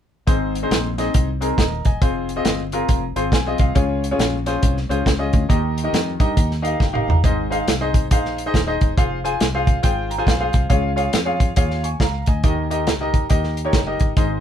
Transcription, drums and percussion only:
0.27 kick medium
0.27 closed hi-hat medium
0.55 closed hi-hat medium
0.71 snare loud
0.71 closed hi-hat medium
0.98 snare soft
0.98 closed hi-hat medium
1.14 kick medium
1.14 closed hi-hat medium
1.42 closed hi-hat medium
1.58 kick medium
1.58 snare loud
1.58 closed hi-hat medium
1.85 kick medium
1.85 closed hi-hat medium
2.02 kick loud
2.02 closed hi-hat medium
2.29 closed hi-hat medium
2.45 snare loud
2.45 closed hi-hat medium
2.72 closed hi-hat medium
2.89 kick medium
2.89 closed hi-hat medium
3.16 closed hi-hat medium
3.32 kick medium
3.32 snare loud
3.32 closed hi-hat medium
3.58 kick medium
3.58 closed hi-hat medium
3.75 kick loud
3.75 closed hi-hat medium
4.04 closed hi-hat medium
4.19 snare loud
4.19 closed hi-hat medium
4.46 snare soft
4.46 closed hi-hat medium
4.63 kick medium
4.63 closed hi-hat medium
4.77 snare soft
4.91 closed hi-hat medium
5.06 kick medium
5.06 snare loud
5.06 closed hi-hat medium
5.33 kick medium
5.33 closed hi-hat medium
5.50 kick loud
5.50 closed hi-hat medium
5.78 closed hi-hat medium
5.94 snare loud
5.94 closed hi-hat medium
6.20 kick medium
6.20 closed hi-hat medium
6.37 kick medium
6.37 closed hi-hat medium
6.51 snare soft
6.65 closed hi-hat medium
6.80 kick medium
6.80 snare medium
6.95 mid tom medium
7.10 floor tom loud
7.24 kick medium
7.24 closed hi-hat medium
7.52 closed hi-hat medium
7.68 snare loud
7.68 closed hi-hat medium
7.94 kick medium
7.94 closed hi-hat medium
8.11 kick medium
8.11 closed hi-hat medium
8.25 snare soft
8.38 closed hi-hat medium
8.54 kick medium
8.54 snare loud
8.54 closed hi-hat medium
8.81 kick medium
8.81 closed hi-hat medium
8.98 kick loud
8.98 closed hi-hat medium
9.25 closed hi-hat medium
9.40 snare loud
9.40 closed hi-hat medium
9.67 kick medium
9.67 closed hi-hat medium
9.83 kick medium
9.83 closed hi-hat medium
10.11 closed hi-hat medium
10.27 kick medium
10.27 snare loud
10.27 closed hi-hat medium
10.53 kick medium
10.53 closed hi-hat medium
10.70 kick loud
10.70 closed hi-hat medium
10.98 closed hi-hat medium
11.13 snare loud
11.13 closed hi-hat medium
11.40 kick medium
11.40 closed hi-hat medium
11.56 kick medium
11.56 closed hi-hat medium
11.71 snare soft
11.84 closed hi-hat medium
12.00 kick medium
12.00 snare loud
12.00 closed hi-hat medium
12.26 kick medium
12.26 closed hi-hat medium
12.44 kick loud
12.44 closed hi-hat medium
12.71 closed hi-hat medium
12.87 snare loud
12.87 closed hi-hat medium
13.14 kick medium
13.14 closed hi-hat medium
13.30 kick medium
13.30 closed hi-hat medium
13.44 snare soft
13.57 closed hi-hat medium
13.73 kick medium
13.73 snare loud
13.73 closed hi-hat medium
14.00 kick medium
14.00 closed hi-hat medium
14.17 kick loud
14.17 closed hi-hat medium

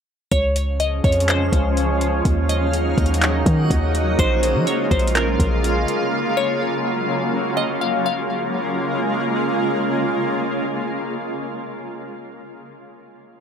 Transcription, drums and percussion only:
0.32 kick loud
0.32 closed hi-hat medium
0.56 closed hi-hat medium
0.80 closed hi-hat medium
1.04 kick loud
1.04 closed hi-hat soft
1.12 closed hi-hat medium
1.20 closed hi-hat medium
1.28 clap loud
1.28 closed hi-hat medium
1.52 kick loud
1.52 closed hi-hat medium
1.77 closed hi-hat medium
2.01 closed hi-hat medium
2.25 kick loud
2.25 closed hi-hat medium
2.49 closed hi-hat medium
2.73 closed hi-hat medium
2.98 kick loud
2.98 closed hi-hat soft
3.06 closed hi-hat medium
3.14 closed hi-hat medium
3.22 clap loud
3.22 closed hi-hat medium
3.46 kick loud
3.46 closed hi-hat medium
3.70 kick loud
3.70 closed hi-hat medium
3.95 closed hi-hat medium
4.19 kick loud
4.19 closed hi-hat medium
4.43 closed hi-hat medium
4.67 closed hi-hat medium
4.91 kick loud
4.91 closed hi-hat soft
4.99 closed hi-hat medium
5.07 closed hi-hat medium
5.15 clap loud
5.15 closed hi-hat medium
5.40 kick medium
5.40 closed hi-hat medium
5.64 closed hi-hat medium
5.88 closed hi-hat medium

